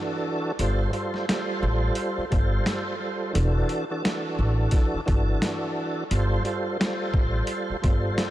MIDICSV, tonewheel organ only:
0, 0, Header, 1, 2, 480
1, 0, Start_track
1, 0, Tempo, 689655
1, 410, Time_signature, 4, 2, 24, 8
1, 5779, End_track
2, 0, Start_track
2, 0, Title_t, "Tonewheel organ"
2, 0, Program_c, 0, 16
2, 0, Note_on_c, 0, 52, 91
2, 0, Note_on_c, 0, 62, 89
2, 0, Note_on_c, 0, 66, 79
2, 0, Note_on_c, 0, 69, 98
2, 360, Note_off_c, 0, 52, 0
2, 361, Note_off_c, 0, 62, 0
2, 363, Note_off_c, 0, 66, 0
2, 365, Note_off_c, 0, 69, 0
2, 408, Note_on_c, 0, 55, 85
2, 411, Note_on_c, 0, 65, 78
2, 415, Note_on_c, 0, 69, 86
2, 418, Note_on_c, 0, 72, 103
2, 634, Note_off_c, 0, 55, 0
2, 635, Note_off_c, 0, 65, 0
2, 637, Note_off_c, 0, 69, 0
2, 639, Note_off_c, 0, 72, 0
2, 645, Note_on_c, 0, 55, 92
2, 648, Note_on_c, 0, 65, 77
2, 652, Note_on_c, 0, 69, 82
2, 655, Note_on_c, 0, 72, 93
2, 872, Note_off_c, 0, 55, 0
2, 874, Note_off_c, 0, 65, 0
2, 875, Note_off_c, 0, 69, 0
2, 877, Note_off_c, 0, 72, 0
2, 891, Note_on_c, 0, 55, 95
2, 894, Note_on_c, 0, 65, 86
2, 897, Note_on_c, 0, 69, 78
2, 900, Note_on_c, 0, 72, 104
2, 1565, Note_off_c, 0, 55, 0
2, 1566, Note_off_c, 0, 65, 0
2, 1568, Note_off_c, 0, 69, 0
2, 1569, Note_off_c, 0, 72, 0
2, 1599, Note_on_c, 0, 55, 102
2, 1602, Note_on_c, 0, 65, 87
2, 1606, Note_on_c, 0, 69, 83
2, 1609, Note_on_c, 0, 72, 106
2, 2054, Note_off_c, 0, 55, 0
2, 2056, Note_off_c, 0, 65, 0
2, 2057, Note_off_c, 0, 69, 0
2, 2059, Note_off_c, 0, 72, 0
2, 2083, Note_on_c, 0, 55, 79
2, 2087, Note_on_c, 0, 65, 71
2, 2090, Note_on_c, 0, 69, 72
2, 2093, Note_on_c, 0, 72, 80
2, 2311, Note_off_c, 0, 55, 0
2, 2313, Note_off_c, 0, 65, 0
2, 2315, Note_off_c, 0, 69, 0
2, 2316, Note_off_c, 0, 72, 0
2, 2318, Note_on_c, 0, 52, 86
2, 2321, Note_on_c, 0, 62, 83
2, 2324, Note_on_c, 0, 66, 80
2, 2327, Note_on_c, 0, 69, 102
2, 2674, Note_off_c, 0, 52, 0
2, 2675, Note_off_c, 0, 62, 0
2, 2677, Note_off_c, 0, 66, 0
2, 2679, Note_off_c, 0, 69, 0
2, 2716, Note_on_c, 0, 52, 85
2, 2720, Note_on_c, 0, 62, 82
2, 2722, Note_on_c, 0, 66, 82
2, 2725, Note_on_c, 0, 69, 96
2, 2799, Note_off_c, 0, 52, 0
2, 2802, Note_off_c, 0, 62, 0
2, 2806, Note_off_c, 0, 66, 0
2, 2808, Note_on_c, 0, 52, 89
2, 2809, Note_off_c, 0, 69, 0
2, 2811, Note_on_c, 0, 62, 82
2, 2814, Note_on_c, 0, 66, 83
2, 2817, Note_on_c, 0, 69, 94
2, 3483, Note_off_c, 0, 52, 0
2, 3485, Note_off_c, 0, 62, 0
2, 3486, Note_off_c, 0, 66, 0
2, 3488, Note_off_c, 0, 69, 0
2, 3520, Note_on_c, 0, 52, 97
2, 3523, Note_on_c, 0, 62, 87
2, 3527, Note_on_c, 0, 66, 82
2, 3530, Note_on_c, 0, 69, 99
2, 4200, Note_off_c, 0, 52, 0
2, 4201, Note_off_c, 0, 62, 0
2, 4203, Note_off_c, 0, 66, 0
2, 4204, Note_off_c, 0, 69, 0
2, 4248, Note_on_c, 0, 55, 83
2, 4251, Note_on_c, 0, 65, 79
2, 4254, Note_on_c, 0, 69, 86
2, 4257, Note_on_c, 0, 72, 106
2, 4474, Note_off_c, 0, 55, 0
2, 4475, Note_off_c, 0, 65, 0
2, 4477, Note_off_c, 0, 69, 0
2, 4478, Note_off_c, 0, 72, 0
2, 4484, Note_on_c, 0, 55, 93
2, 4488, Note_on_c, 0, 65, 78
2, 4491, Note_on_c, 0, 69, 82
2, 4494, Note_on_c, 0, 72, 97
2, 4712, Note_off_c, 0, 55, 0
2, 4714, Note_off_c, 0, 65, 0
2, 4715, Note_off_c, 0, 69, 0
2, 4717, Note_off_c, 0, 72, 0
2, 4729, Note_on_c, 0, 55, 97
2, 4732, Note_on_c, 0, 65, 85
2, 4736, Note_on_c, 0, 69, 78
2, 4739, Note_on_c, 0, 72, 102
2, 5404, Note_off_c, 0, 55, 0
2, 5406, Note_off_c, 0, 65, 0
2, 5407, Note_off_c, 0, 69, 0
2, 5409, Note_off_c, 0, 72, 0
2, 5439, Note_on_c, 0, 55, 103
2, 5442, Note_on_c, 0, 65, 88
2, 5445, Note_on_c, 0, 69, 86
2, 5448, Note_on_c, 0, 72, 107
2, 5779, Note_off_c, 0, 55, 0
2, 5779, Note_off_c, 0, 65, 0
2, 5779, Note_off_c, 0, 69, 0
2, 5779, Note_off_c, 0, 72, 0
2, 5779, End_track
0, 0, End_of_file